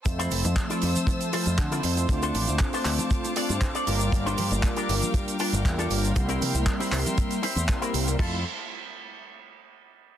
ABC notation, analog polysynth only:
X:1
M:4/4
L:1/8
Q:1/4=118
K:F
V:1 name="Analog polysynth"
[F,A,Cce]4- [F,A,Cce] [F,A,Cce]2 [A,CEFc] | [A,CDFc]4- [A,CDFc] [A,CDFc]2 [G,B,DFB] | [G,B,DFB]4- [G,B,DFB] [G,B,DFB]2 [G,B,DFB] | [G,B,CEB]4- [G,B,CEB] z [G,B,CEB]2 |
[A,CEFc] z6 z |]